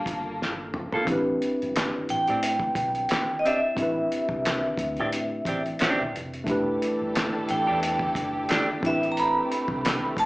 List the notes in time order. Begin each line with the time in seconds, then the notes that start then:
Already playing: G3 A#3 D4 F4 G4 A4 A5
0.06 G1, kick, closed hi-hat
0.42 snare
0.74 mid tom
0.92 A#3 F4 A4, floor tom
1.05 A1 C4 D4 E4, kick, closed hi-hat
1.10 G4 B4
1.42 closed hi-hat
1.62 G1, closed hi-hat
1.76 snare, clap, closed hi-hat
2.09 A1 G5, closed hi-hat
2.27 A2 C4 D4 G4, closed hi-hat
2.43 closed hi-hat
2.60 kick
2.75 B1, kick, closed hi-hat
2.95 closed hi-hat
3.09 snare, clap, closed hi-hat
3.39 D#5
3.45 C4 D4 G4 E5, closed hi-hat
3.75 A1 C4 D4 E4, kick, closed hi-hat
3.80 G4 B4
4.12 closed hi-hat
4.29 C2, kick
4.45 snare, clap, closed hi-hat
4.77 D2, kick, closed hi-hat
4.97 A2 G4, closed hi-hat
5.01 C4 D4
5.12 closed hi-hat
5.45 A1 C4 D4 G4, kick, closed hi-hat
5.66 closed hi-hat
5.79 C4 D4 G4, snare, clap, closed hi-hat
6.01 B1
6.16 F1, closed hi-hat
6.34 closed hi-hat
6.44 E1 E3 A3 D4 E4 G4 A4, kick, closed hi-hat
6.50 G4 B4
6.82 closed hi-hat
7.02 G1
7.15 snare, clap, closed hi-hat
7.49 A1 G5, closed hi-hat
7.67 E2 A3 D4 G4
7.83 closed hi-hat
7.99 kick
8.15 F#1, kick, closed hi-hat
8.49 A3 D4 G4, snare, clap, closed hi-hat
8.81 A1 A3 C4 D4 E4, kick
8.85 G4 B4 E5, closed hi-hat
9.03 closed hi-hat
9.12 A#5
9.17 B5, closed hi-hat
9.52 closed hi-hat
9.68 C2, kick
9.85 snare, clap, closed hi-hat
10.17 D2 A5, kick, closed hi-hat